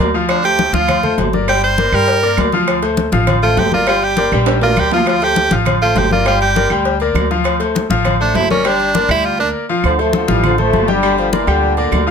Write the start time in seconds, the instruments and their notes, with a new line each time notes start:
0.00 upright bass D2, high conga
0.14 grand piano F3 F4 F5
0.29 tenor saxophone D4, cowbell, high conga, low agogo, claves
0.44 grand piano A3 A4 C5, tenor saxophone G4, cowbell, high conga, low agogo
0.59 cowbell, high conga, low timbale
0.73 upright bass D2, grand piano F3 F4 F5, tenor saxophone F4, cowbell, high conga
0.88 cowbell, high conga, low conga, low agogo, claves
1.03 grand piano A3 A4 C5, high conga, low conga
1.18 upright bass G1, cowbell, high conga, low timbale, low agogo
1.33 grand piano A#3 A#4 D5, high conga
1.48 grand piano G3 G4 G5, tenor saxophone G4, cowbell, high conga, low agogo, claves
1.63 tenor saxophone C5, high conga, low agogo
1.78 grand piano A#3 A#4 D5, cowbell, high conga, low timbale, low agogo
1.92 upright bass G2, grand piano G3 G4 G5, tenor saxophone A#4, low agogo, claves
2.08 cowbell, high conga
2.23 grand piano A#3 A#4 D5, high conga, low agogo
2.37 upright bass D2, cowbell, high conga, low timbale, low agogo, claves
2.52 grand piano F3 F4 F5, high conga
2.67 cowbell, high conga, low agogo, claves
2.82 grand piano A3 A4 C5, cowbell, high conga, low agogo
2.97 cowbell, high conga, low timbale
3.12 upright bass A1, grand piano F3 F4 F5, cowbell, high conga
3.27 cowbell, high conga, low conga, low agogo, claves
3.42 grand piano A3 A4 C5, tenor saxophone F4, high conga
3.57 upright bass G1, tenor saxophone G4, cowbell, high conga, low timbale, low agogo
3.72 grand piano A#3 A#4 D5, tenor saxophone F4, high conga
3.87 grand piano G3 G4 G5, tenor saxophone F4, cowbell, high conga, low agogo, claves
4.02 tenor saxophone G4, high conga, low agogo
4.17 grand piano A#3 A#4 D5, cowbell, high conga, low timbale, low agogo
4.32 upright bass A#1, grand piano G3 G4 G5, high timbale, low agogo, claves
4.46 cowbell, high conga, high timbale
4.61 grand piano A#3 A#4 D5, tenor saxophone F4, high conga, low timbale, low agogo
4.76 upright bass D2, tenor saxophone G4, cowbell, high conga, low agogo, claves
4.91 grand piano F3 F4 F5, tenor saxophone F4, high conga, low timbale
5.06 tenor saxophone F4, cowbell, high conga, low agogo, claves
5.20 grand piano A3 A4 C5, tenor saxophone G4, cowbell, high conga, low agogo
5.36 cowbell, high conga, low timbale
5.51 upright bass A1, grand piano F3 F4 F5, cowbell, high conga
5.65 cowbell, high conga, low conga, low agogo, claves
5.81 grand piano A3 A4 C5, tenor saxophone F4, high conga
5.95 upright bass G1, tenor saxophone G4, cowbell, high conga, low timbale, low agogo
6.11 grand piano A#3 A#4 D5, tenor saxophone F4, high conga
6.25 grand piano G3 G4 G5, tenor saxophone F4, cowbell, high conga, low agogo, claves
6.41 tenor saxophone G4, high conga, low agogo
6.56 grand piano A#3 A#4 D5, cowbell, high conga, low timbale, low agogo
6.70 upright bass D2, grand piano G3 G4 G5, low agogo, claves
6.85 cowbell, high conga
7.00 grand piano A#3 A#4 D5, high conga, low agogo
7.14 upright bass D2, cowbell, high conga, low timbale, low agogo, claves
7.31 grand piano F3 F4 F5, high conga
7.44 cowbell, high conga, low agogo, claves
7.59 grand piano A3 A4 C5, cowbell, high conga, low agogo
7.75 cowbell, high conga, low timbale
7.89 upright bass A1, grand piano F3 F4 F5, cowbell, high conga
8.05 cowbell, high conga, low conga, low agogo, claves
8.20 grand piano A3 A4 C5, tenor saxophone D4, high conga
8.34 upright bass G1, tenor saxophone E4, cowbell, high conga, low timbale, low agogo
8.50 grand piano A#3 A#4 D5, tenor saxophone C#4, high conga
8.64 grand piano G3 G4 G5, tenor saxophone D4, cowbell, high conga, low agogo, claves
8.80 high conga, low agogo
8.94 grand piano A#3 A#4 D5, cowbell, high conga, low timbale, low agogo
9.08 upright bass D2, grand piano G3 G4 G5, tenor saxophone E4, low agogo, claves
9.25 tenor saxophone F4
9.39 grand piano A#3 A#4 D5, tenor saxophone D4
9.69 grand piano F3 F4 F5
9.83 upright bass D2, trombone section D3 F3, high conga, low agogo, claves
9.99 trombone section F3 A3, grand piano A3 A4 C5, high conga, low agogo
10.13 trombone section D3 F3, grand piano A3 A4 C5, high conga, low timbale
10.28 upright bass A1, trombone section E3 G3, grand piano F3 F4 F5, high conga
10.44 trombone section D3 F3, high conga, low conga, low agogo, claves
10.58 trombone section F3 A3, grand piano A3 A4 C5, high conga, low conga
10.73 upright bass G1, high conga, low timbale, low agogo
10.88 trombone section D3 G3, grand piano G3 G4 G5, high conga
11.02 grand piano G3 G4 G5, high conga, low agogo, claves
11.18 trombone section D3 F3, high conga, low agogo
11.33 trombone section A#2 E3, grand piano A#3 A#4 D5, high conga, low timbale, low agogo
11.47 upright bass D2, trombone section A#2 D3, grand piano G3 G4 G5, low agogo, claves
11.63 high conga
11.77 grand piano A#3 A#4 D5, high conga, low agogo
11.92 upright bass D2, high conga, low timbale, low agogo, claves
12.07 grand piano F3 F4 F5